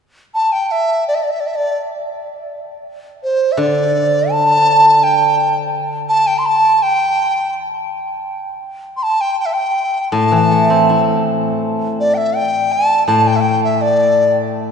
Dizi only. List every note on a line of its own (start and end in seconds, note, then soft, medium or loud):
0.34 0.54 A5 medium
0.52 0.73 G5 medium
0.71 1.07 E5 medium
1.08 1.16 D5 medium
1.15 1.24 E5 medium
1.23 1.32 D5 soft
1.31 1.42 E5 medium
1.40 1.48 D5 soft
1.47 1.57 E5 soft
1.56 1.80 D5 medium
3.23 3.53 C5 medium
3.52 3.61 E5 soft
3.59 4.33 D5 medium
4.31 5.05 A5 medium
5.03 5.57 G5 medium
6.09 6.28 A5 medium
6.27 6.40 G5 medium
6.38 6.48 C6 medium
6.46 6.84 A5 medium
6.83 7.56 G5 medium
8.97 9.04 C6 medium
9.03 9.22 A5 medium
9.21 9.39 G5 medium
9.40 9.47 G5 medium
9.46 9.55 E5 medium
9.53 10.11 G5 medium
10.12 11.21 A5 medium
12.00 12.16 D5 medium
12.14 12.37 E5 medium
12.14 12.18 G5 soft
12.36 12.74 G5 medium
12.72 13.06 A5 medium
13.07 13.28 A5 medium
13.27 13.37 G5 medium
13.36 13.42 E5 medium
13.40 13.64 G5 medium
13.64 13.83 E5 medium
13.81 14.37 D5 medium